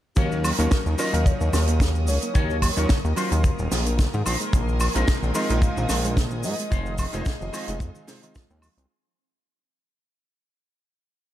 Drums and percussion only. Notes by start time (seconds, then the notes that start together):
0.16 kick, closed hi-hat, cabasa
0.32 cabasa
0.44 open hi-hat, cabasa, high woodblock
0.59 closed hi-hat, cabasa
0.71 kick, snare, closed hi-hat, cabasa
0.86 cabasa
0.98 open hi-hat, cabasa, high woodblock
1.00 cabasa
1.14 closed hi-hat, cabasa
1.26 kick, closed hi-hat, cabasa
1.41 cabasa
1.53 snare, open hi-hat, cabasa, high woodblock
1.67 closed hi-hat, cabasa
1.80 kick, snare, closed hi-hat, cabasa
1.95 cabasa
2.07 open hi-hat, cabasa
2.09 cabasa
2.22 closed hi-hat, cabasa
2.35 kick, closed hi-hat, cabasa
2.50 cabasa
2.62 kick, open hi-hat, cabasa, high woodblock
2.77 closed hi-hat, cabasa
2.89 kick, snare, closed hi-hat, cabasa
3.05 cabasa
3.16 open hi-hat, cabasa, high woodblock
3.32 closed hi-hat, cabasa
3.44 kick, closed hi-hat, cabasa
3.59 cabasa
3.71 snare, open hi-hat, cabasa
3.86 closed hi-hat, cabasa
3.98 kick, snare, closed hi-hat, cabasa
4.13 cabasa
4.26 open hi-hat, cabasa, high woodblock
4.40 closed hi-hat, cabasa
4.53 kick, closed hi-hat, cabasa
4.68 cabasa
4.80 open hi-hat, cabasa, high woodblock
4.95 closed hi-hat, cabasa
5.08 kick, snare, closed hi-hat, cabasa
5.23 cabasa
5.35 open hi-hat, cabasa, high woodblock
5.50 closed hi-hat, cabasa
5.62 kick, closed hi-hat, cabasa
5.77 cabasa
5.89 snare, open hi-hat, cabasa, high woodblock
5.90 cabasa
6.05 closed hi-hat, cabasa
6.17 kick, snare, closed hi-hat, cabasa
6.31 cabasa
6.43 cabasa
6.45 open hi-hat, cabasa
6.59 closed hi-hat, cabasa
6.71 kick, closed hi-hat, cabasa
6.86 cabasa
6.98 kick, open hi-hat, cabasa, high woodblock
7.13 closed hi-hat, cabasa
7.26 kick, snare, closed hi-hat, cabasa
7.42 cabasa
7.53 open hi-hat, cabasa, high woodblock
7.68 closed hi-hat, cabasa
7.80 kick, closed hi-hat, cabasa
7.95 cabasa
8.08 snare, open hi-hat, cabasa
8.23 closed hi-hat, cabasa
8.35 kick, snare, closed hi-hat, cabasa
8.50 cabasa
8.62 open hi-hat, cabasa, high woodblock
8.78 closed hi-hat, cabasa